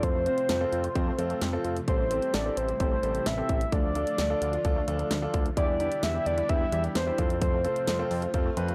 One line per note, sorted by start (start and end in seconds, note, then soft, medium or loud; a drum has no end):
0.00 0.29 F2 loud
0.00 3.68 C3 medium
0.00 1.86 F3 medium
0.00 0.13 F3 medium
0.00 5.53 A3 medium
0.00 0.17 C4 medium
0.00 0.17 F4 medium
0.00 1.86 F4 medium
0.00 0.17 A4 medium
0.00 1.65 C5 loud
0.00 kick loud
0.00 closed hi-hat medium
0.15 0.25 A3 medium
0.26 0.48 C4 medium
0.26 0.36 C4 medium
0.26 0.48 F4 medium
0.26 0.48 C5 medium
0.26 closed hi-hat medium
0.38 closed hi-hat medium
0.49 0.65 F2 loud
0.49 0.59 A4 medium
0.49 snare loud
0.49 closed hi-hat medium
0.61 0.83 C4 medium
0.61 0.83 F4 medium
0.61 0.83 A4 loud
0.72 0.89 F2 loud
0.72 closed hi-hat medium
0.84 0.94 F4 medium
0.84 closed hi-hat medium
0.95 1.12 F2 loud
0.95 1.10 C4 medium
0.95 1.06 C4 medium
0.95 1.10 F4 medium
0.95 1.10 C5 medium
0.95 kick loud
0.95 closed hi-hat medium
1.07 1.17 A3 medium
1.18 1.35 F2 loud
1.18 1.29 F3 medium
1.18 1.40 C4 medium
1.18 1.40 F4 medium
1.18 1.40 A4 loud
1.18 closed hi-hat medium
1.30 1.40 A3 medium
1.30 closed hi-hat medium
1.42 1.58 F2 loud
1.42 1.52 C4 loud
1.42 snare loud
1.42 closed hi-hat medium
1.53 1.75 C4 medium
1.53 1.75 F4 medium
1.53 1.63 F4 medium
1.53 1.75 A4 loud
1.65 1.81 F2 loud
1.65 closed hi-hat medium
1.77 closed hi-hat soft
1.88 2.20 A1 loud
1.88 3.71 G3 medium
1.88 1.98 G3 medium
1.88 2.02 C4 medium
1.88 3.71 E4 medium
1.88 2.02 G4 medium
1.88 2.02 A4 medium
1.88 2.35 C5 medium
1.88 kick loud
1.88 closed hi-hat medium
1.99 2.09 A3 medium
2.11 2.33 C4 medium
2.11 2.21 C4 medium
2.11 2.33 G4 medium
2.11 2.33 A4 medium
2.11 closed hi-hat medium
2.22 closed hi-hat medium
2.34 2.50 A1 loud
2.34 2.44 A4 medium
2.34 2.58 D5 medium
2.34 snare loud
2.34 closed hi-hat medium
2.45 2.67 C4 medium
2.45 2.67 G4 medium
2.45 2.67 A4 medium
2.57 2.73 A1 loud
2.57 2.79 C5 medium
2.57 closed hi-hat medium
2.69 2.79 G4 medium
2.69 closed hi-hat medium
2.80 2.96 A1 loud
2.80 2.95 C4 medium
2.80 2.90 C4 medium
2.80 2.95 G4 medium
2.80 2.95 A4 medium
2.80 3.28 C5 loud
2.80 kick medium
2.80 closed hi-hat medium
2.92 3.02 A3 medium
3.03 3.19 A1 loud
3.03 3.13 G3 medium
3.03 3.25 C4 medium
3.03 3.25 G4 medium
3.03 3.25 A4 medium
3.03 closed hi-hat medium
3.15 3.25 A3 medium
3.15 closed hi-hat medium
3.26 3.42 A1 loud
3.26 3.36 C4 medium
3.26 3.74 E5 loud
3.26 snare loud
3.26 closed hi-hat medium
3.38 3.60 C4 medium
3.38 3.60 G4 medium
3.38 3.48 G4 medium
3.38 3.60 A4 medium
3.49 3.65 A1 loud
3.49 kick medium
3.49 closed hi-hat medium
3.61 closed hi-hat soft
3.72 4.05 D2 loud
3.72 7.15 D3 medium
3.72 5.55 F3 medium
3.72 3.82 F3 medium
3.72 3.87 D4 medium
3.72 5.55 F4 medium
3.72 3.87 F4 medium
3.72 3.87 A4 medium
3.72 5.34 D5 loud
3.72 kick loud
3.72 closed hi-hat medium
3.84 3.94 A3 medium
3.95 4.17 D4 medium
3.95 4.06 D4 medium
3.95 4.17 F4 medium
3.95 4.17 A4 medium
3.95 closed hi-hat medium
4.07 closed hi-hat medium
4.18 4.35 D2 loud
4.18 4.29 A4 medium
4.18 snare loud
4.18 closed hi-hat medium
4.30 4.52 D4 medium
4.30 4.52 F4 medium
4.30 4.52 A4 loud
4.42 4.58 D2 loud
4.42 closed hi-hat medium
4.53 4.63 F4 medium
4.53 closed hi-hat medium
4.65 4.81 D2 loud
4.65 4.79 D4 medium
4.65 4.75 D4 medium
4.65 4.79 F4 medium
4.65 4.79 A4 loud
4.65 kick loud
4.65 closed hi-hat medium
4.76 4.86 A3 medium
4.88 5.04 D2 loud
4.88 4.98 F3 medium
4.88 5.10 D4 medium
4.88 5.10 F4 medium
4.88 5.10 A4 loud
4.88 closed hi-hat medium
4.99 5.09 A3 medium
4.99 closed hi-hat medium
5.11 5.27 D2 loud
5.11 5.21 D4 loud
5.11 snare loud
5.11 closed hi-hat medium
5.22 5.44 D4 medium
5.22 5.44 F4 medium
5.22 5.32 F4 medium
5.22 5.44 A4 loud
5.34 5.50 D2 loud
5.34 kick medium
5.34 closed hi-hat medium
5.46 closed hi-hat soft
5.57 5.89 E2 loud
5.57 5.67 E3 medium
5.57 7.17 G3 medium
5.57 7.17 B3 medium
5.57 5.72 D4 medium
5.57 5.72 E4 medium
5.57 7.17 E4 medium
5.57 5.72 G4 medium
5.57 6.05 D5 loud
5.57 kick loud
5.57 closed hi-hat medium
5.69 5.79 G3 medium
5.80 6.02 D4 medium
5.80 5.90 D4 medium
5.80 6.02 E4 medium
5.80 6.02 G4 medium
5.80 closed hi-hat medium
5.92 closed hi-hat medium
6.03 6.19 E2 loud
6.03 6.13 G4 medium
6.03 6.28 E5 loud
6.03 snare loud
6.03 closed hi-hat medium
6.15 6.36 D4 medium
6.15 6.36 E4 medium
6.15 6.37 G4 medium
6.26 6.42 E2 loud
6.26 6.51 D5 loud
6.26 closed hi-hat medium
6.38 6.48 E4 medium
6.38 closed hi-hat medium
6.49 6.66 E2 loud
6.49 6.64 D4 medium
6.49 6.59 D4 medium
6.49 6.64 E4 medium
6.49 6.64 G4 medium
6.49 6.72 E5 loud
6.49 kick loud
6.49 closed hi-hat medium
6.61 6.71 G3 medium
6.72 6.89 E2 loud
6.72 6.82 E3 medium
6.72 6.94 D4 medium
6.72 6.94 E4 medium
6.72 6.94 G4 medium
6.72 6.83 E5 loud
6.72 closed hi-hat medium
6.84 6.94 G3 medium
6.84 closed hi-hat medium
6.95 7.12 E2 loud
6.95 7.06 D4 medium
6.95 7.38 C5 medium
6.95 snare loud
6.95 closed hi-hat medium
7.07 7.18 D4 medium
7.07 7.18 E4 medium
7.07 7.17 E4 medium
7.07 7.18 G4 medium
7.18 7.67 F2 loud
7.18 8.75 C3 medium
7.18 8.75 F3 medium
7.18 8.75 A3 medium
7.18 7.55 C4 medium
7.18 7.55 F4 medium
7.18 8.75 F4 medium
7.18 7.55 A4 medium
7.18 kick loud
7.18 closed hi-hat medium
7.30 closed hi-hat medium
7.42 7.52 F3 medium
7.42 8.75 C5 medium
7.42 kick loud
7.42 closed hi-hat medium
7.53 7.63 A3 medium
7.65 7.86 C4 medium
7.65 7.75 C4 medium
7.65 7.86 F4 medium
7.65 7.86 A4 medium
7.65 closed hi-hat medium
7.76 closed hi-hat medium
7.87 8.04 F2 loud
7.87 7.98 A4 medium
7.87 snare loud
7.87 closed hi-hat medium
7.99 8.21 C4 loud
7.99 8.21 F4 medium
7.99 8.21 A4 loud
8.11 8.27 F2 loud
8.11 open hi-hat medium
8.22 8.32 F4 medium
8.22 closed hi-hat medium
8.34 8.50 F2 loud
8.34 8.44 C4 medium
8.34 8.48 C4 medium
8.34 8.48 F4 medium
8.34 8.48 A4 medium
8.34 kick loud
8.34 closed hi-hat medium
8.45 8.56 A3 medium
8.57 8.73 F2 loud
8.57 8.67 F3 medium
8.57 8.75 C4 medium
8.57 8.75 F4 medium
8.57 8.75 B4 loud
8.57 closed hi-hat medium
8.68 8.75 A3 medium
8.68 closed hi-hat medium